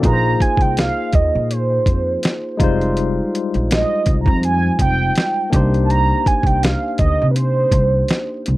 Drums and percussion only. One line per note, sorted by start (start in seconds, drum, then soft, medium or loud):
0.03 kick loud
0.03 closed hi-hat medium
0.40 kick medium
0.40 closed hi-hat medium
0.57 kick medium
0.57 closed hi-hat soft
0.77 snare loud
0.77 closed hi-hat medium
1.13 kick medium
1.13 closed hi-hat medium
1.51 closed hi-hat medium
1.86 kick medium
1.86 closed hi-hat medium
2.23 snare loud
2.23 closed hi-hat medium
2.60 kick loud
2.60 closed hi-hat medium
2.81 closed hi-hat soft
2.97 closed hi-hat medium
3.35 closed hi-hat medium
3.54 closed hi-hat soft
3.71 snare loud
3.71 closed hi-hat medium
4.06 kick medium
4.06 closed hi-hat medium
4.26 kick medium
4.43 closed hi-hat medium
4.79 kick medium
4.79 closed hi-hat medium
5.16 snare loud
5.16 closed hi-hat medium
5.53 kick loud
5.53 closed hi-hat medium
5.74 closed hi-hat soft
5.90 closed hi-hat medium
6.26 kick medium
6.26 closed hi-hat medium
6.43 kick medium
6.43 closed hi-hat soft
6.63 snare loud
6.63 closed hi-hat medium
6.98 kick medium
6.98 closed hi-hat medium
7.36 closed hi-hat medium
7.72 kick medium
7.72 closed hi-hat medium
8.08 snare loud
8.08 closed hi-hat medium
8.46 closed hi-hat medium